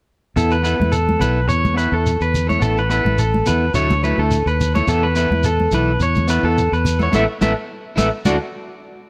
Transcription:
0.36 fingered electric bass E2, clean electric guitar B3 E4 A4, muted clean electric guitar stroke, shekere
0.51 clean electric guitar B4, shekere
0.63 clean electric guitar B3 E4 A4 B4, shekere
0.78 fingered electric bass E2, clean electric guitar E4 A4
0.82 high conga
0.92 clean electric guitar A4, shekere
1.09 high conga
1.19 fingered electric bass B1, clean electric guitar B3 E4 A4 B4, low conga, shekere
1.48 fingered electric bass E2, clean electric guitar C#5, shekere
1.65 high conga, low conga, shekere
1.74 clean electric guitar B3 E4 A4 B4
1.78 shekere
1.91 fingered electric bass E2, clean electric guitar E4 A4
2.06 shekere
2.21 fingered electric bass E2, clean electric guitar B4, shekere
2.34 low conga, shekere
2.47 clean electric guitar E4 A4 C#5, high conga, shekere
2.60 fingered electric bass A1, clean electric guitar B3 E4 A4, shekere
2.78 clean electric guitar B4, shekere
2.89 clean electric guitar B3 E4 A4 B4, shekere
3.03 fingered electric bass A1, clean electric guitar E4 A4, high conga
3.18 clean electric guitar A4, shekere
3.34 high conga
3.46 fingered electric bass E2, clean electric guitar B3 E4 A4 B4, low conga, shekere
3.74 fingered electric bass D2, clean electric guitar F#3 A3 E4 A4 C#5, shekere
3.90 high conga, low conga, shekere
4.03 clean electric guitar F#3 A3 E4 A4 B4, shekere
4.18 fingered electric bass D2, clean electric guitar A3 E4 A4
4.31 shekere
4.46 fingered electric bass D#2, clean electric guitar B4, shekere
4.61 low conga, shekere
4.75 clean electric guitar A3 E4 A4 C#5, high conga, shekere
4.87 fingered electric bass E2, clean electric guitar E3 B3 E4 A4, shekere
5.03 clean electric guitar B4
5.15 clean electric guitar E3 B3 E4 A4 B4, shekere
5.30 fingered electric bass E2, clean electric guitar E4, muted clean electric guitar stroke, high conga
5.43 clean electric guitar A4, shekere
5.60 high conga
5.71 fingered electric bass B1, clean electric guitar E3 B3 E4 B4, low conga, shekere
5.75 clean electric guitar A4
6.00 fingered electric bass E2, clean electric guitar C#5, shekere
6.15 high conga, low conga, shekere
6.28 clean electric guitar E3 B3 E4 A4 B4, shekere
6.43 fingered electric bass E2, clean electric guitar B3 E4 A4
6.58 shekere
6.72 fingered electric bass E2, clean electric guitar B4, shekere
6.85 low conga, shekere
6.99 clean electric guitar B3 E4 A4 C#5, high conga, shekere
7.12 fingered electric bass A1, clean electric guitar B3 E4 A4 B4 E5, high conga, shekere
7.41 fingered electric bass A1, clean electric guitar B3 E4 A4 B4 E5, high conga, shekere
7.96 fingered electric bass A1, clean electric guitar B3 E4 A4 B4 E5, high conga, shekere
8.25 fingered electric bass D2, clean electric guitar D4 E4 F#4 A4 D5, high conga, shekere

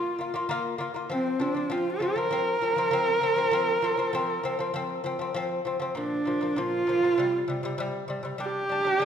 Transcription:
Already playing: lute A#3 F4, horsehead fiddle F4
0.19 lute A#3 F4
0.34 lute A#3 F4
0.49 lute A#3 F4
0.78 lute A#3 F4
0.94 lute A#3 F4
1.10 lute F3 C4, horsehead fiddle C4
1.40 lute F3 C4, horsehead fiddle D4
1.55 lute F3 C4
1.70 lute F3 C4, horsehead fiddle F4
2.00 lute F3 C4, horsehead fiddle A#4
2.16 lute F3 C4
2.31 lute F3 C4
2.62 lute F3 C4
2.76 lute F3 C4
2.91 lute F3 C4
3.21 lute F3 C4
3.36 lute F3 C4
3.51 lute F3 C4
3.82 lute F3 C4
3.97 lute F3 C4
4.13 lute F3 C4
4.43 lute F3 C4
4.59 lute F3 C4
4.74 lute F3 C4
5.04 lute F3 C4
5.19 lute F3 C4
5.34 lute F3 C4
5.65 lute F3 C4
5.80 lute F3 C4
5.95 lute A#2 F3, horsehead fiddle D4
6.25 lute A#2 F3
6.41 lute A#2 F3
6.56 lute A#2 F3, horsehead fiddle F4
6.87 lute A#2 F3
7.02 lute A#2 F3
7.18 lute C3 G3
7.48 lute C3 G3
7.63 lute C3 G3
7.78 lute C3 G3
8.08 lute C3 G3
8.23 lute C3 G3
8.38 lute G3 D4, horsehead fiddle G4
8.69 lute G3 D4
8.85 lute G3 D4
9.00 lute G3 D4

